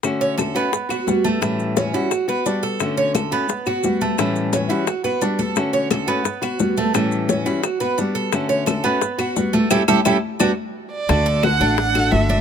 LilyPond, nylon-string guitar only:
\new Staff \with { instrumentName = "Nylon-string guitar" } { \time 4/4 \key d \major \tempo 4 = 174 <d a cis' fis'>4. <a cis' fis'>8 r8 <b fis'>8 <g b fis'>4 | <a, e g cis' e'>4. <e g cis' e'>8 r8 <b fis'>8 <g b fis'>4 | <d a cis' fis'>4. <a cis' fis'>8 r8 <b fis'>8 <g b fis'>4 | <a, e g cis' e'>4. <e g cis' e'>8 r8 <b fis'>8 <g b fis'>4 |
<d a cis' fis'>4. <a cis' fis'>8 r8 <b fis'>8 <g b fis'>4 | <a, e g cis' e'>4. <e g cis' e'>8 r8 <b fis'>8 <g b fis'>4 | <d a cis' fis'>4. <a cis' fis'>8 r8 <b fis'>8 <g b fis'>4 | <g a cis'>8 <g a cis'>8 <g a cis'>8 r8 <g b d'>8 r4. |
<d a d' fis'>4. <a d' fis'>8 r8 <a d' fis'>8 <d a d' fis'>4 | }